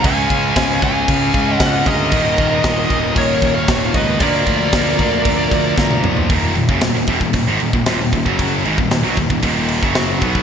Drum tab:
CC |x-x-x-x-x-x-x-x-|x-x-x-x-x-x-x-x-|x-x-x-x-x-x-----|x-x-x-x-x-x-x-x-|
SD |----o-------o---|----o-------o---|----o-------o---|----o-------o---|
T1 |----------------|----------------|-------------o--|----------------|
T2 |----------------|----------------|--------------o-|----------------|
FT |----------------|----------------|---------------o|----------------|
BD |o-o-o-o-o-o-o-o-|o-o-o-o-o-o-o-o-|o-o-o-o-o-o-o---|o--o--ooo--o--oo|

CC |x-x-x-x-x-x-x-x-|
SD |----o-------o---|
T1 |----------------|
T2 |----------------|
FT |----------------|
BD |o--o--ooo--o--oo|